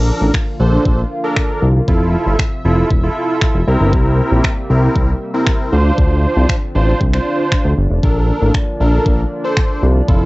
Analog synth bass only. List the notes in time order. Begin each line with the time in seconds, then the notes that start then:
Already playing: A#1
0.21 A1
0.60 A#1
0.85 A#1
1.62 C2
1.88 F1
2.26 G1
2.65 F1
2.90 E1
3.54 F1
3.67 C2
3.80 G1
3.93 C2
4.32 A#1
4.70 C2
4.96 C2
5.73 D2
5.98 D2
6.37 C2
6.75 A1
7.01 C2
7.65 D2
7.78 G1
7.90 F1
8.03 A#1
8.42 A1
8.80 A#1
9.06 A#1
9.83 C2
10.08 F1